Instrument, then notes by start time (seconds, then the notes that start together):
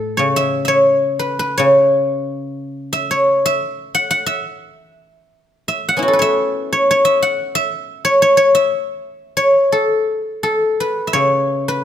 guzheng
Already playing: A2 A4 B4
0.17 C#3 C#5
0.36 E5
0.65 C#5 E5
1.19 B4
1.39 B4
1.58 C#3 C#5
2.93 E5
3.11 C#5
3.46 E5
3.95 F#5
4.11 F#5
4.26 E5
5.68 E5
5.89 F#5
5.97 B3 C#4 E4
6.03 F#4
6.08 A4
6.13 B4
6.19 C#5 E5
6.73 C#5
6.91 C#5
7.05 E5
7.22 F#5
7.55 E5
8.05 C#5
8.22 C#5
8.37 C#5
8.55 E5
9.37 C#5
9.72 A4
10.43 A4
10.80 B4
11.07 E5
11.13 C#3 C#5
11.68 B4